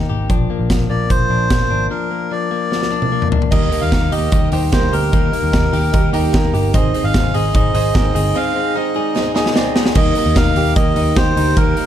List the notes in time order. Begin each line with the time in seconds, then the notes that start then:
Already playing: A#3 D#4
0.09 G#1 G4
0.30 A#1 F3 D4, kick, closed hi-hat
0.50 A#3
0.59 A#1
0.70 A#1 F3, kick, snare, closed hi-hat
0.89 A#1 A#3 D5
1.10 A#1 F3 C5, kick, closed hi-hat
1.30 A#1 D4
1.50 A#3, kick, snare, closed hi-hat
1.71 G#1 D4
1.90 F3 D4 A#4
2.11 A#3
2.31 F3 D5
2.51 A#3
2.71 F3, snare
2.82 snare
2.92 D4
3.02 high tom
3.12 A#3
3.22 mid tom
3.32 D4, floor tom
3.42 floor tom
3.51 D#2 D#3 G3 A#3 D#4 G4 A#4 D#5, kick, crash
3.71 A#3 D#4 G4 A#4, open hi-hat
3.81 D#2 F5
3.92 D#2 G3 A#3 D#4 G4 A#4, kick, snare, closed hi-hat
4.12 D#2 A#3 D#4 G4 A#4 D#5, open hi-hat
4.32 D#2 D#3 G3 A#3 D#4 G4 A#4, kick, closed hi-hat
4.52 D#2 D#4 G4 C5, open hi-hat
4.72 D#2 G3 A#3 D#4 G4 A#4 C5, kick, snare, closed hi-hat
4.92 D2 D#4 G4 A#4 C5, open hi-hat
5.12 D#2 D#3 G3 A#3 D#4 G4 A#4, kick, closed hi-hat
5.32 A#3 D#4 G4 A#4, open hi-hat
5.43 D#2
5.52 D#2 G3 A#3 D#4 G4 A#4, kick, snare, closed hi-hat
5.72 D#2 A#3 D#4 G4 A#4, open hi-hat
5.93 D#2 D#3 G3 A#3 D#4 G4 A#4, kick, closed hi-hat
6.13 D#2 D#4 G4 A#4, open hi-hat
6.33 D#2 G3 A#3 D#4 G4 A#4, kick, snare, closed hi-hat
6.53 G1 A#3 D#4 G4 A#4, open hi-hat
6.74 G#1 G#2 D#3 G#3 C4 D#4 G#4 C5 D#5, kick, closed hi-hat
6.94 C4 D#4 G#4 C5, open hi-hat
7.04 G#1 F5
7.13 G#1 G#3 C4 D#4 G#4 C5, kick, snare, closed hi-hat
7.34 G#1 G#3 C4 D#4 G#4 C5 D#5, open hi-hat
7.54 G#1 G#2 D#3 G#3 C4 D#4 G#4 C5 D#5, kick, closed hi-hat
7.74 G#1 D#4 G#4 C5, open hi-hat
7.94 G#1 G#3 C4 D#4 G#4 A#4, kick, snare, closed hi-hat
8.14 G1 G#3 C4 D#4 G#4 C5, open hi-hat
8.34 G#2 D#3 G#3 C4 D#4 G#4 D#5 F5
8.54 C4 D#4 G#4 C5
8.74 G#3 C4 D#4 G#4 C5 D#5
8.94 G#3 C4 D#4 G#4 D5
9.14 G#2 D#3 G#3 C4 D#4 G#4 C5, snare
9.34 D#4 G#4 D#5, snare
9.46 snare
9.54 G#3 C4 D#4 G#4 D5, snare
9.75 D#4 G#4 C5, snare
9.86 snare
9.95 D#2 D#3 G3 A#3 D#4 G4 A#4 D#5, kick, crash
10.15 A#3 D#4 G4 A#4, open hi-hat
10.26 D#2
10.35 D#2 G3 A#3 D#4 G4 A#4 F5, kick, snare, hi-hat pedal, ride
10.55 D#2 A#3 D#4 G4 A#4, open hi-hat
10.76 D#2 A#3 D#4 G4 A#4 D#5, kick, hi-hat pedal, ride
10.95 D#2 D#4 G4 A#4, open hi-hat
11.16 D#2 G3 A#3 D#4 G4 C5, kick, snare, hi-hat pedal, ride
11.35 D2 A#3 D#4 G4 A#4, open hi-hat
11.56 D#2 D#3 G3 A#3 D#4 G4 A#4, kick, hi-hat pedal, ride
11.76 A#3 D#4 G4 C5, open hi-hat